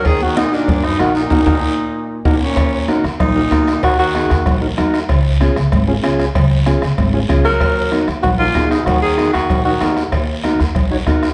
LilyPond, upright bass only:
\new Staff \with { instrumentName = "Upright bass" } { \clef bass \time 4/4 \key ees \minor \tempo 4 = 190 ees,2 ges,4 bes,,4 | ees,8 ees,8 r2 ees,8 r8 | ees,4. ees,16 r16 bes,,4 ees,4 | ees,4. ees,16 r16 bes,,4 ees,4 |
des,4. des,16 r16 aes,,4 des,4 | des,4. des,16 r16 aes,,4 des,4 | ees,4. ees,16 r16 bes,,4 ees,4 | ees,4. ees,16 r16 bes,,4 ees,4 |
ees,4. ees,16 r16 bes,,4 ees,4 | }